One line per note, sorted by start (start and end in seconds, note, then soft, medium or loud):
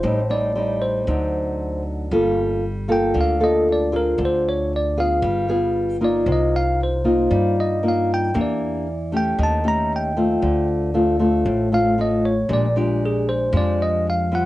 0.00 1.03 A1 medium
0.00 1.05 A2 medium
0.00 0.19 G3 soft
0.00 0.19 C4 soft
0.00 0.31 C5 medium
0.04 0.19 D#4 medium
0.30 0.51 G3 medium
0.30 0.52 C4 medium
0.30 0.52 D#4 medium
0.30 0.84 D5 medium
0.55 1.03 G3 medium
0.55 1.04 C4 medium
0.55 1.04 D#4 medium
0.82 1.81 C5 medium
1.07 2.07 D2 medium
1.07 2.09 D3 medium
1.07 2.07 F#3 soft
1.07 2.07 C4 medium
1.07 2.08 D#4 medium
2.11 3.11 G1 medium
2.11 3.13 G3 medium
2.11 2.63 A#3 medium
2.11 2.63 F4 medium
2.11 2.64 A4 medium
2.88 3.37 A#3 medium
2.88 3.37 F4 medium
2.88 3.37 A4 medium
2.88 3.16 G5 medium
3.14 4.15 D2 medium
3.14 4.16 D3 medium
3.21 3.43 F5 medium
3.40 3.88 A#3 medium
3.40 3.89 F4 medium
3.40 3.89 A4 medium
3.40 3.68 D#5 medium
3.72 3.95 D5 medium
3.92 4.92 C4 medium
3.92 4.93 F4 medium
3.92 4.93 G#4 medium
3.96 4.20 A#4 medium
4.18 5.19 D2 medium
4.18 5.20 D3 medium
4.25 4.47 C5 medium
4.49 4.72 C#5 medium
4.76 4.99 D5 medium
4.97 5.45 B3 medium
4.97 5.45 F4 medium
4.97 5.45 G#4 medium
4.97 5.47 F5 medium
5.22 6.22 G1 medium
5.22 6.00 G3 medium
5.48 5.96 B3 medium
5.48 5.97 F4 medium
5.48 5.97 G#4 medium
6.01 7.00 A#3 medium
6.01 7.01 D#4 medium
6.01 7.01 F4 medium
6.01 6.28 D5 medium
6.26 7.26 C2 medium
6.26 7.28 C3 medium
6.32 6.55 D#5 medium
6.56 6.80 F5 medium
6.83 7.55 C5 medium
7.04 7.78 A#3 medium
7.04 7.79 D#4 medium
7.04 7.78 F4 medium
7.31 8.30 G2 medium
7.31 8.32 G3 medium
7.60 7.84 D#5 medium
7.83 8.30 A#3 medium
7.83 8.31 D#4 medium
7.83 8.31 F4 medium
7.88 8.11 F5 medium
8.14 8.36 G5 medium
8.34 9.34 E2 medium
8.34 9.36 E3 medium
8.34 8.86 A#3 medium
8.34 8.86 D4 medium
8.34 8.86 G4 medium
8.41 9.12 D5 medium
9.12 9.60 A3 medium
9.12 9.60 C#4 medium
9.12 9.61 G4 medium
9.17 9.40 G5 medium
9.38 10.38 D#2 medium
9.38 10.40 D#3 medium
9.43 9.66 A5 medium
9.64 10.12 A3 medium
9.64 10.12 C#4 medium
9.64 10.12 G4 medium
9.68 9.91 A#5 medium
9.96 10.67 G5 medium
10.17 10.93 A3 medium
10.17 10.93 C4 medium
10.17 10.93 F4 medium
10.42 11.42 D2 medium
10.42 11.43 D3 medium
10.94 11.16 A3 medium
10.94 11.16 C4 medium
10.94 11.16 F4 medium
11.19 11.67 A3 medium
11.19 11.68 C4 medium
11.19 11.68 F4 medium
11.46 12.46 A1 medium
11.46 12.47 A2 medium
11.72 11.94 A3 medium
11.72 11.94 C4 medium
11.72 11.94 F4 medium
11.72 11.98 F5 medium
11.98 12.31 A3 soft
11.98 12.31 C4 medium
11.98 12.32 F4 medium
11.98 12.25 D#5 medium
12.25 12.50 C#5 medium
12.49 13.49 A#1 medium
12.49 13.50 A#2 medium
12.49 12.65 G#3 medium
12.49 12.65 D4 medium
12.49 12.65 G4 medium
12.53 12.77 D5 medium
12.76 13.49 G#3 medium
12.76 13.50 D4 medium
12.76 13.02 F4 medium
12.76 13.50 G4 medium
13.05 13.29 G#4 medium
13.29 13.53 C5 medium
13.53 14.45 F2 medium
13.53 14.45 F3 medium
13.53 14.27 G#3 medium
13.53 14.27 D4 medium
13.53 14.27 G4 medium
13.57 13.81 D5 medium
13.82 14.06 D#5 medium
14.10 14.33 F5 medium
14.32 14.45 G3 medium
14.32 14.45 C4 medium
14.32 14.45 F4 medium
14.32 14.45 F#5 medium